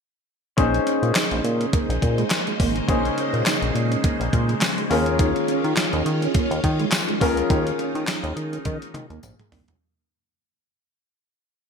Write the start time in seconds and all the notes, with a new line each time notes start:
0.57 A#1 C#3 G#3 A#3 C#4 D#4 G#4 C5, kick, closed hi-hat
0.74 closed hi-hat
0.87 C#4, closed hi-hat
1.03 A#2, closed hi-hat
1.15 D#4, snare, clap, closed hi-hat, tambourine
1.31 A#1, muted clean electric guitar stroke, closed hi-hat
1.44 A#2, closed hi-hat
1.60 C#4, closed hi-hat
1.73 A#3, kick, closed hi-hat
1.89 A#1, closed hi-hat
2.02 A#2, muted clean electric guitar stroke, kick, closed hi-hat
2.18 G#3, closed hi-hat
2.31 snare, clap, closed hi-hat, tambourine
2.47 G#3, closed hi-hat
2.60 G#1 A#3, kick, open hi-hat
2.76 closed hi-hat
2.88 A#1 A#3 C#4 D#4 G#4 C5, kick, closed hi-hat
3.05 closed hi-hat
3.17 C#4, closed hi-hat
3.33 A#2, closed hi-hat
3.46 D#4, snare, clap, closed hi-hat, tambourine
3.62 A#1, muted clean electric guitar stroke, closed hi-hat
3.75 A#2, closed hi-hat
3.91 C#4, closed hi-hat
4.04 A#3, kick, closed hi-hat
4.20 A#1, closed hi-hat
4.33 A#2, muted clean electric guitar stroke, kick, closed hi-hat
4.49 G#3, closed hi-hat
4.61 snare, clap, closed hi-hat, tambourine
4.78 G#3, closed hi-hat
4.90 D#2 D#3 A#3 C#4 F4 G#4 A#4, open hi-hat
5.06 closed hi-hat
5.19 D#4, kick, closed hi-hat
5.35 muted clean electric guitar stroke, closed hi-hat
5.48 C#4, closed hi-hat
5.64 D#3, closed hi-hat
5.77 D#4, snare, clap, closed hi-hat, tambourine
5.93 D#2, closed hi-hat
6.06 D#3, closed hi-hat
6.22 C#4, closed hi-hat
6.34 A#3, kick, closed hi-hat
6.51 D#2, closed hi-hat
6.64 D#3, kick, closed hi-hat
6.79 G#3, closed hi-hat
6.92 muted clean electric guitar stroke, snare, clap, closed hi-hat, tambourine
7.08 G#3, closed hi-hat
7.20 C#2 A#3 C#4 D#4 F4 G#4 A#4, kick, open hi-hat
7.37 closed hi-hat
7.50 D#2 D#4, kick, closed hi-hat
7.67 closed hi-hat
7.79 C#4, closed hi-hat
7.95 D#3, closed hi-hat
8.07 D#4, snare, clap, closed hi-hat, tambourine
8.24 D#2, muted clean electric guitar stroke, closed hi-hat
8.36 D#3, closed hi-hat
8.53 C#4, closed hi-hat
8.65 D#3 C#4, kick, closed hi-hat, high tom
8.82 closed hi-hat
8.94 D#3, muted clean electric guitar stroke, closed hi-hat, mid tom
9.10 D#2 A#3, closed hi-hat
9.23 A#1, muted clean electric guitar stroke, closed hi-hat, mid tom, tambourine
9.39 G#3, closed hi-hat, mid tom
9.52 C2 A#3, floor tom, open hi-hat
9.68 C#2, closed hi-hat, floor tom